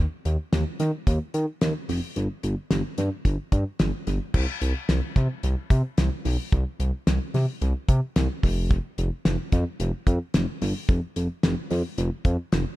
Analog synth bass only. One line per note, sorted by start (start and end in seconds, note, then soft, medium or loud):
0.25 0.37 D#2 loud
0.52 0.64 D#2 loud
0.80 0.91 D#3 loud
1.07 1.19 D#2 loud
1.34 1.46 D#3 loud
1.61 1.73 D#2 loud
1.89 2.01 F1 medium
2.16 2.28 G1 loud
2.43 2.55 G1 loud
2.71 2.82 G1 loud
2.98 3.10 G2 loud
3.25 3.37 G1 loud
3.52 3.64 G2 medium
3.80 3.92 G1 loud
4.07 4.19 G1 medium
4.34 4.46 C2 loud
4.62 4.73 C2 loud
4.89 5.01 C2 loud
5.16 5.28 C3 loud
5.43 5.55 C2 loud
5.70 5.82 C3 loud
5.98 6.10 C2 loud
6.25 6.37 B1 loud
6.52 6.64 C2 loud
6.80 6.91 C2 loud
7.07 7.19 C2 loud
7.34 7.46 C3 loud
7.61 7.73 C2 loud
7.89 8.00 C3 loud
8.16 8.28 C2 loud
8.43 8.79 F1 loud
8.98 9.10 F1 loud
9.25 9.37 F1 loud
9.52 9.64 F2 loud
9.80 9.92 F1 loud
10.07 10.19 F2 loud
10.34 10.46 F1 medium
10.62 10.73 G1 loud
10.89 11.01 F1 loud
11.16 11.28 F1 loud
11.43 11.55 F1 loud
11.71 11.82 F2 loud
11.98 12.10 F1 loud
12.25 12.37 F2 loud
12.53 12.64 F1 loud